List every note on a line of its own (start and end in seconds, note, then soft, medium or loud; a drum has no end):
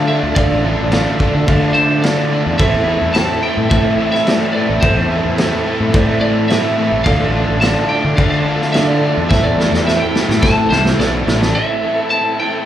0.00 0.19 D3 medium
0.00 0.36 A3 medium
0.00 0.35 D4 medium
0.00 0.35 F4 medium
0.00 0.25 A4 medium
0.00 0.35 A4 medium
0.00 0.26 D5 medium
0.00 0.26 F5 medium
0.07 0.35 D3 medium
0.07 0.37 A3 medium
0.07 0.36 D4 medium
0.07 0.37 F4 loud
0.07 0.15 E5 medium
0.23 0.36 D2 medium
0.35 0.50 D2 medium
0.35 0.63 D3 medium
0.35 0.64 A3 medium
0.35 2.58 A3 medium
0.35 0.65 D4 loud
0.35 2.58 D4 medium
0.35 2.58 F4 medium
0.35 0.65 F4 loud
0.35 0.81 A4 medium
0.35 1.80 D5 loud
0.35 0.82 D5 medium
0.35 0.82 F5 medium
0.35 kick loud
0.35 crash medium
0.52 0.77 A1 medium
0.64 0.91 D3 medium
0.64 0.93 A3 medium
0.64 0.92 D4 medium
0.64 0.93 F4 loud
0.79 1.05 A1 medium
0.92 1.19 D3 medium
0.92 1.20 A3 medium
0.92 1.20 D4 medium
0.92 1.21 F4 medium
0.92 1.37 A4 medium
0.92 1.37 D5 medium
0.92 1.38 F5 medium
0.92 snare loud
0.92 crash medium
1.20 1.47 D3 medium
1.20 1.48 A3 medium
1.20 1.48 D4 loud
1.20 1.48 F4 loud
1.20 kick medium
1.35 1.48 D3 medium
1.47 1.74 D3 medium
1.47 2.42 D3 medium
1.47 1.76 A3 medium
1.47 1.76 D4 medium
1.47 1.77 F4 loud
1.47 1.93 A4 medium
1.47 1.93 D5 medium
1.47 1.93 F5 loud
1.47 kick loud
1.47 crash medium
1.74 2.02 D3 medium
1.74 2.04 A3 medium
1.74 2.04 D4 medium
1.74 2.04 F4 medium
1.74 2.04 C5 medium
2.02 2.30 D3 medium
2.02 2.31 A3 medium
2.02 2.31 D4 loud
2.02 2.32 F4 loud
2.02 2.48 A4 medium
2.02 2.58 D5 medium
2.02 2.49 D5 medium
2.02 2.49 F5 medium
2.02 snare loud
2.02 crash medium
2.31 2.58 D3 medium
2.31 2.60 A3 medium
2.31 2.58 D4 medium
2.31 2.59 F4 medium
2.46 2.59 E2 medium
2.58 2.73 A1 medium
2.58 2.86 A2 loud
2.58 2.87 E3 loud
2.58 4.81 A3 medium
2.58 2.87 A3 loud
2.58 4.81 C4 medium
2.58 2.88 C4 loud
2.58 4.81 E4 medium
2.58 2.89 E4 medium
2.58 4.81 A4 medium
2.58 3.05 A4 medium
2.58 3.05 C5 medium
2.58 3.17 E5 medium
2.58 3.05 E5 medium
2.58 kick loud
2.58 crash medium
2.74 3.00 E2 medium
2.86 3.15 A2 medium
2.86 3.15 E3 medium
2.86 3.16 A3 medium
2.86 3.16 C4 medium
2.86 3.17 E4 medium
3.02 3.28 E2 medium
3.14 3.43 A2 medium
3.14 3.44 E3 medium
3.14 3.44 A3 medium
3.14 3.45 C4 medium
3.14 3.45 E4 medium
3.14 3.60 A4 medium
3.14 3.60 C5 medium
3.14 3.61 G5 medium
3.14 3.42 A5 medium
3.14 snare loud
3.14 crash medium
3.43 3.70 A2 medium
3.43 3.71 E3 medium
3.43 3.72 A3 medium
3.43 3.71 C4 medium
3.43 3.72 E4 medium
3.43 3.69 G5 medium
3.57 3.70 A2 medium
3.70 3.98 A2 medium
3.70 4.65 A2 loud
3.70 3.98 E3 medium
3.70 3.99 A3 medium
3.70 4.00 C4 medium
3.70 4.00 E4 medium
3.70 4.17 A4 medium
3.70 4.17 C5 medium
3.70 4.10 E5 medium
3.70 4.17 E5 medium
3.70 kick loud
3.70 crash medium
3.99 4.26 A2 medium
3.99 4.27 E3 medium
3.99 4.28 A3 medium
3.99 4.28 C4 medium
3.99 4.28 E4 medium
4.12 4.52 E5 medium
4.12 snare soft
4.27 4.54 A2 medium
4.27 4.54 E3 loud
4.27 4.56 A3 loud
4.27 4.55 C4 loud
4.27 4.56 E4 medium
4.27 4.72 A4 medium
4.27 4.72 C5 medium
4.27 4.73 D5 medium
4.27 snare loud
4.27 crash medium
4.53 4.82 A2 medium
4.53 4.82 E3 medium
4.53 4.84 A3 medium
4.53 4.83 C4 medium
4.53 4.80 D5 medium
4.57 4.84 E4 medium
4.69 4.82 A1 medium
4.81 4.96 A1 medium
4.81 5.09 A2 medium
4.81 5.10 E3 loud
4.81 7.04 A3 medium
4.81 5.11 A3 medium
4.81 7.04 C4 medium
4.81 5.11 C4 loud
4.81 7.05 E4 medium
4.81 5.28 A4 medium
4.81 7.05 A4 medium
4.81 6.18 C5 medium
4.81 5.28 C5 medium
4.81 5.28 E5 medium
4.81 kick loud
4.81 crash medium
4.86 5.12 E4 loud
4.96 5.23 E2 loud
5.10 5.37 A2 medium
5.10 5.38 E3 medium
5.10 5.39 A3 medium
5.10 5.39 C4 medium
5.10 5.39 E4 medium
5.25 5.51 E2 medium
5.38 5.64 A2 medium
5.38 5.65 E3 medium
5.38 5.66 A3 medium
5.38 5.65 C4 medium
5.38 5.66 E4 medium
5.38 5.83 A4 medium
5.38 5.83 C5 medium
5.38 5.84 E5 medium
5.38 snare loud
5.38 crash medium
5.65 5.92 A2 medium
5.65 5.93 E3 medium
5.65 5.94 A3 medium
5.65 5.94 C4 loud
5.65 5.94 E4 loud
5.80 5.94 A2 medium
5.93 6.20 A2 medium
5.93 6.88 A2 medium
5.93 6.21 E3 medium
5.93 6.22 A3 medium
5.93 6.22 C4 loud
5.93 6.22 E4 loud
5.93 6.39 A4 medium
5.93 6.39 C5 medium
5.93 6.39 D5 loud
5.93 kick loud
5.93 crash medium
6.21 6.48 A2 medium
6.21 6.49 E3 medium
6.21 6.50 A3 medium
6.21 6.50 C4 loud
6.21 6.51 E4 medium
6.21 6.47 D5 medium
6.48 6.75 A2 loud
6.48 6.76 E3 medium
6.48 6.78 A3 loud
6.48 6.77 C4 loud
6.48 6.95 A4 medium
6.48 6.95 C5 medium
6.48 7.04 E5 medium
6.48 6.96 E5 medium
6.48 snare loud
6.48 crash medium
6.52 6.78 E4 loud
6.77 7.04 A2 medium
6.77 7.04 E3 medium
6.77 7.05 A3 medium
6.77 7.05 C4 medium
6.77 7.05 E4 medium
6.92 7.05 A1 medium
7.04 7.19 D2 loud
7.04 7.32 D3 medium
7.04 7.33 A3 loud
7.04 9.29 A3 medium
7.04 7.33 D4 loud
7.04 9.28 D4 medium
7.04 7.34 F4 loud
7.04 9.29 F4 medium
7.04 7.51 A4 medium
7.04 9.29 A4 medium
7.04 7.51 D5 medium
7.04 7.63 F5 loud
7.04 7.52 F5 medium
7.04 kick loud
7.04 crash medium
7.20 7.46 A1 medium
7.33 7.60 D3 medium
7.33 7.62 A3 medium
7.33 7.61 D4 medium
7.33 7.62 F4 medium
7.49 7.75 A1 medium
7.61 7.88 D3 medium
7.61 7.90 A3 medium
7.61 7.90 D4 medium
7.61 7.90 F4 loud
7.61 8.08 A4 medium
7.61 8.08 D5 medium
7.61 8.08 F5 medium
7.61 7.88 A5 medium
7.61 snare loud
7.61 crash medium
7.89 8.16 D3 medium
7.89 8.17 A3 loud
7.89 8.17 D4 loud
7.89 8.18 F4 loud
7.89 8.19 G5 medium
8.04 8.18 D3 medium
8.17 8.44 D3 medium
8.17 9.13 D3 medium
8.17 8.46 A3 medium
8.17 8.45 D4 medium
8.17 8.46 F4 loud
8.17 8.63 A4 medium
8.17 8.64 D5 medium
8.17 8.29 F5 loud
8.17 8.64 F5 medium
8.17 kick loud
8.17 crash medium
8.30 8.72 F5 medium
8.45 8.72 D3 medium
8.45 8.74 A3 loud
8.45 8.74 D4 medium
8.45 8.74 F4 loud
8.62 snare soft
8.72 9.00 D3 loud
8.72 9.02 A3 loud
8.72 9.02 D4 loud
8.72 9.02 F4 loud
8.72 9.19 A4 medium
8.72 9.20 D5 medium
8.72 8.87 E5 loud
8.72 9.20 F5 medium
8.72 snare loud
8.72 crash medium
8.87 9.29 D5 medium
9.02 9.29 D3 medium
9.02 9.31 A3 medium
9.02 9.29 D4 medium
9.02 9.30 F4 medium
9.17 9.30 E2 medium
9.29 9.44 A1 medium
9.29 9.57 A2 loud
9.29 9.57 E3 loud
9.29 11.53 A3 medium
9.29 9.58 A3 medium
9.29 11.53 C4 medium
9.29 9.58 C4 loud
9.29 11.53 E4 medium
9.29 9.59 E4 loud
9.29 9.76 A4 medium
9.29 11.53 A4 medium
9.29 9.76 C5 medium
9.29 9.43 E5 medium
9.29 9.76 E5 medium
9.29 kick loud
9.29 snare medium
9.44 9.71 E2 medium
9.44 9.86 D5 medium
9.58 9.85 A2 medium
9.58 9.86 E3 medium
9.58 9.86 A3 medium
9.58 9.87 C4 medium
9.58 9.87 E4 medium
9.58 snare medium
9.72 9.99 E2 medium
9.72 snare medium
9.86 10.13 A2 medium
9.86 10.14 E3 medium
9.86 10.15 A3 medium
9.86 10.15 C4 loud
9.86 10.16 E4 medium
9.86 10.32 A4 medium
9.86 10.32 C5 medium
9.86 10.01 E5 medium
9.86 10.32 E5 medium
9.86 snare medium
10.00 10.42 G5 medium
10.15 10.41 A2 medium
10.15 10.42 E3 medium
10.15 10.43 A3 loud
10.15 10.44 C4 loud
10.15 10.44 E4 loud
10.15 snare medium
10.29 10.42 A2 medium
10.29 snare medium
10.42 10.69 A2 medium
10.42 10.70 E3 medium
10.42 10.70 A3 medium
10.42 10.71 C4 medium
10.42 10.72 E4 medium
10.42 10.88 A4 medium
10.42 10.88 C5 medium
10.42 10.88 G5 medium
10.42 11.23 A5 medium
10.42 kick loud
10.42 snare medium
10.70 10.96 C2 medium
10.70 10.98 A2 medium
10.70 10.99 E3 medium
10.70 11.00 A3 medium
10.70 11.00 C4 loud
10.70 11.01 E4 medium
10.70 11.00 C5 medium
10.70 snare medium
10.86 snare medium
10.99 11.24 B1 medium
10.99 11.26 A2 medium
10.99 11.27 E3 loud
10.99 11.28 A3 loud
10.99 11.29 C4 loud
10.99 11.29 E4 loud
10.99 11.44 A4 medium
10.99 11.45 C5 medium
10.99 11.54 D5 loud
10.99 11.45 D5 medium
10.99 snare medium
11.27 11.52 A1 medium
11.27 11.54 A2 medium
11.27 11.54 E3 medium
11.27 11.55 A3 medium
11.27 11.55 C4 medium
11.27 11.55 E4 medium
11.27 snare loud
11.42 snare medium
11.55 11.83 A2 medium
11.55 11.84 E3 medium
11.55 12.65 A3 medium
11.55 11.85 A3 medium
11.55 12.65 C4 medium
11.55 12.65 E4 medium
11.55 12.65 A4 medium
11.55 12.13 E5 loud
11.84 12.12 A2 medium
11.84 12.12 E3 medium
11.84 12.13 A3 medium
12.10 12.40 A2 medium
12.10 12.41 E3 medium
12.10 12.41 A3 medium
12.10 12.39 A5 loud
12.40 12.65 A2 medium
12.40 12.65 E3 medium
12.40 12.65 A3 loud
12.40 12.65 G5 loud